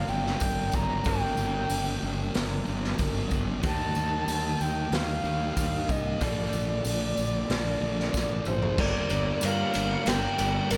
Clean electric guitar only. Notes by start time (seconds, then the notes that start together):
Already playing: G2 D3 F3 A#3 D4 A#4
1.06 G2 D3 F3 A#3 D4 A#4
2.35 G2 D3 F3 A#3 D4 A#4
3.63 D#3 G3 A#3 G4
4.92 D#3 G3 A#3 G4
6.20 A#2 D3 F3 A#3 D4 A4
7.49 A#2 D3 F3 A#3 D4 A4
8.78 G2 D3 G3 A#3 D4 A#4
9.10 G3 A#3 D4 A#4
9.42 G3 A#3 D4 A#4
9.74 G3 A#3 D4 A#4
10.06 G2 D3 G3 A#3 D4 A#4
10.38 G3 A#3 D4 A#4
10.69 G3 A#3 D4 A#4